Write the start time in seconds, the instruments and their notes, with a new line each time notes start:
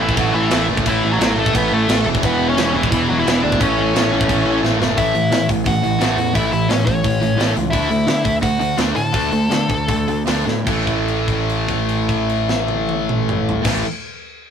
0.00 picked electric bass A1, distorted electric guitar A2 E3 A3, lead electric guitar E3 E4
0.09 kick
0.17 picked electric bass A1, distorted electric guitar A2 E3 A3, lead electric guitar F#3 F#4, kick, crash
0.34 picked electric bass A1, lead electric guitar E3 E4
0.51 picked electric bass A1, distorted electric guitar A2 E3 A3, snare, crash
0.69 picked electric bass F#1, distorted electric guitar A2 E3 A3
0.77 kick
0.86 picked electric bass A1, distorted electric guitar A2 E3 A3, lead electric guitar E3 E4, kick, crash
1.03 picked electric bass A1
1.12 lead electric guitar F#3 F#4
1.19 picked electric bass A1, distorted electric guitar A2 E3 A3, snare, crash
1.37 picked electric bass A1, distorted electric guitar A2 E3 A3, lead electric guitar A3 A4
1.46 kick
1.55 picked electric bass A1, distorted electric guitar A2 E3 A3, lead electric guitar B3 B4, kick, crash
1.72 picked electric bass A1, lead electric guitar A3 A4
1.88 picked electric bass A1, distorted electric guitar A2 E3 A3, snare, crash
2.06 picked electric bass E1, distorted electric guitar E2 B2 E3
2.15 kick
2.23 picked electric bass E1, distorted electric guitar E2 B2 E3, lead electric guitar B3 B4, kick, crash
2.39 picked electric bass E1
2.49 lead electric guitar C#4 C#5
2.57 picked electric bass E1, distorted electric guitar E2 B2 E3, snare, crash
2.74 picked electric bass E1, distorted electric guitar E2 B2 E3, lead electric guitar E3 E4
2.83 kick
2.92 picked electric bass E1, distorted electric guitar E2 B2 E3, kick, crash
3.08 picked electric bass E1, lead electric guitar F#3 F#4
3.19 lead electric guitar E3 E4
3.26 picked electric bass E1, distorted electric guitar E2 B2 E3, snare, crash
3.43 picked electric bass D2, distorted electric guitar E2 B2 E3, lead electric guitar D4 D5
3.52 kick
3.59 picked electric bass A1, distorted electric guitar A2 E3 A3, lead electric guitar C#4 C#5, kick, crash
3.78 picked electric bass A1
3.95 picked electric bass A1, distorted electric guitar A2 E3 A3, snare, crash
4.12 picked electric bass A1, distorted electric guitar A2 E3 A3
4.21 kick
4.29 picked electric bass A1, distorted electric guitar A2 E3 A3, kick, crash
4.46 picked electric bass A1
4.63 picked electric bass A1, distorted electric guitar A2 E3 A3, snare
4.80 picked electric bass F#1, distorted electric guitar A2 E3 A3, snare
4.97 picked electric bass A1, distorted electric guitar A2 E3 A3, lead electric guitar E4 E5, kick, open hi-hat
5.15 picked electric bass A1, distorted electric guitar A2 E3, open hi-hat
5.31 picked electric bass A2, distorted electric guitar A2 E3, snare, open hi-hat
5.49 picked electric bass A1, distorted electric guitar A2 E3, kick, open hi-hat
5.66 picked electric bass A1, distorted electric guitar A2 E3, lead electric guitar F#4 F#5, kick, open hi-hat
5.83 picked electric bass A1, distorted electric guitar A2 E3, open hi-hat
6.01 picked electric bass A1, distorted electric guitar A2 E3 A3, snare, open hi-hat
6.17 picked electric bass E2, distorted electric guitar A2 E3, open hi-hat
6.34 picked electric bass A1, distorted electric guitar A2 E3 A3, lead electric guitar E4 E5, kick, open hi-hat
6.52 picked electric bass A1, distorted electric guitar A2 E3, lead electric guitar E4 E5, open hi-hat
6.69 distorted electric guitar A2 E3, picked electric bass A2, lead electric guitar C#4 C#5, snare, open hi-hat
6.86 picked electric bass A1, distorted electric guitar A2 E3, lead electric guitar C#4 C#5, kick, open hi-hat
7.04 picked electric bass A1, distorted electric guitar A2 E3, kick, open hi-hat
7.21 picked electric bass A1, distorted electric guitar A2 E3, open hi-hat
7.38 picked electric bass A1, distorted electric guitar A2 E3 A3, snare, open hi-hat
7.55 picked electric bass C#2, distorted electric guitar A2 E3, open hi-hat
7.70 picked electric bass D2, distorted electric guitar D3 A3 D4, lead electric guitar E4 E5, kick, open hi-hat
7.90 picked electric bass D2, distorted electric guitar D3 A3, open hi-hat
8.07 distorted electric guitar D3 A3, picked electric bass D3, snare, open hi-hat
8.24 picked electric bass D2, distorted electric guitar D3 A3, kick, open hi-hat
8.41 picked electric bass D2, distorted electric guitar D3 A3, lead electric guitar F#4 F#5, kick, open hi-hat
8.59 picked electric bass D2, distorted electric guitar D3 A3, open hi-hat
8.77 picked electric bass D2, distorted electric guitar D3 A3 D4, snare, open hi-hat
8.95 picked electric bass A2, distorted electric guitar D3 A3, lead electric guitar A4 A5, open hi-hat
9.13 picked electric bass D2, distorted electric guitar D3 A3 D4, kick, open hi-hat
9.32 picked electric bass D2, distorted electric guitar D3 A3, open hi-hat
9.50 distorted electric guitar D3 A3, picked electric bass D3, snare, open hi-hat
9.69 picked electric bass D2, distorted electric guitar D3 A3, kick, open hi-hat
9.89 picked electric bass D2, distorted electric guitar D3 A3, kick, open hi-hat
10.08 picked electric bass D2, distorted electric guitar D3 A3, open hi-hat
10.27 picked electric bass D2, distorted electric guitar D3 A3 D4, snare, open hi-hat
10.46 picked electric bass A2, distorted electric guitar D3 A3, snare
10.67 picked electric bass A1, distorted electric guitar A2 E3 A3, kick, crash
10.87 kick, crash
11.08 crash
11.28 kick, crash
11.49 crash
11.68 kick, crash
11.89 crash
12.09 kick, crash
12.29 crash
12.49 snare
12.68 high tom
12.89 high tom
13.09 mid tom
13.29 mid tom
13.49 floor tom
13.64 picked electric bass A1, distorted electric guitar A2 E3, kick, snare, crash
13.68 distorted electric guitar A3